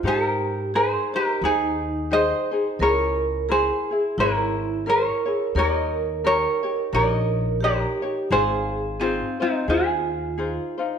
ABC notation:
X:1
M:4/4
L:1/8
Q:"Swing" 1/4=87
K:Ab
V:1 name="Ukulele"
[GB]2 [Ac] [GB] [EA]2 [ce]2 | [Bd]2 [Ac]2 [_FB]2 [Bd]2 | [Be]2 [Bd]2 [Be]2 [GB]2 | [Ac]2 [CF] [CE] [FA]3 z |]
V:2 name="Ukulele"
[EGc]2 [EAc] [Ec] [EAc]2 [EGAc] [EAc] | [_FABd]2 [FAB] [FA] [FABd]2 [FABd] [FAd] | [EGBd]2 [EGBd] [EGd] [EGBd]2 [EGBd] [EGd] | [EFAc]2 [EFAc] [EFc] [EFAc]2 [EFAc] [EFc] |]
V:3 name="Vibraphone"
G2 A G E2 c2 | B2 A2 _F2 B2 | B2 B2 B2 G2 | A2 C C F3 z |]
V:4 name="Upright bass" clef=bass
A,,4 E,,4 | D,,4 A,,,4 | E,,4 B,,,4 | A,,,4 E,,4 |]